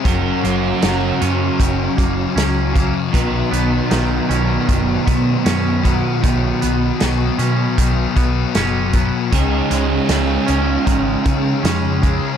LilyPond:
<<
  \new Staff \with { instrumentName = "Overdriven electric guitar" } { \time 4/4 \key b \lydian \tempo 4 = 78 <fis cis' fis' ais'>1 | <b, dis fis b dis' b'>1~ | <b, dis fis b dis' b'>1 | <cis gis cis' dis' gis'>1 | }
  \new Staff \with { instrumentName = "Clean electric guitar" } { \time 4/4 \key b \lydian dis8 ais8 dis8 cis'8 dis8 ais8 cis'8 ais8 | dis8 b8 dis8 cis'8 dis8 b8 cis'8 b8 | dis8 b8 dis8 cis'8 dis8 b8 cis'8 b8 | dis8 gis8 dis8 cis'8 dis8 gis8 cis'8 gis8 | }
  \new Staff \with { instrumentName = "Distorted electric guitar" } { \clef bass \time 4/4 \key b \lydian <fis, cis fis>8 <cis fis>4 <cis fis>4 <cis fis>8 <fis, cis fis>8 <cis fis>8 | <b, fis b>8 <fis b>4 <fis b>4 <fis b>8 <b, fis b>8 <fis b>8 | <b, fis b>8 <fis b>4 <fis b>4 <fis b>8 <b, fis b>8 <fis b>8 | <cis gis cis'>8 <gis cis'>4 <gis cis'>4 <gis cis'>8 <cis gis cis'>8 <gis cis'>8 | }
  \new Staff \with { instrumentName = "Fingered electric bass" } { \clef bass \time 4/4 \key b \lydian fis,,8 fis,,8 fis,,8 fis,8 fis,,8 fis,,8 cis,4 | b,,8 b,,8 b,,8 b,,8 fis,,8 b,8 fis,4 | b,,8 b,,8 b,,8 b,8 b,,8 b,,8 fis,,4 | cis,8 cis,8 cis,8 cis,8 gis,,8 cis8 eis,4 | }
  \new DrumStaff \with { instrumentName = "Drums" } \drummode { \time 4/4 <hh bd>8 hh8 <hh sn>8 hh8 <hh bd>8 <hh bd>8 <hh sn>8 <hh bd>8 | <hh bd>8 hh8 <hh sn>8 hh8 <hh bd>8 <hh bd>8 <hh sn>8 <hh bd>8 | <hh bd>8 hh8 <hh sn>8 hh8 <hh bd>8 <hh bd>8 <hh sn>8 <hh bd>8 | <hh bd>8 hh8 <hh sn>8 hh8 <hh bd>8 <hh bd>8 <hh sn>8 <hh bd>8 | }
>>